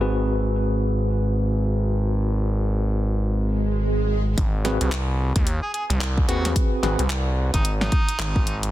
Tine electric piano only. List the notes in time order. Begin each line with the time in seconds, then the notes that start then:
0.01 C4 F#4 G#4 B4
4.65 C4 F#4 G#4 B4
6.28 C4 F#4 G#4 B4
6.83 C4 F#4 G#4 B4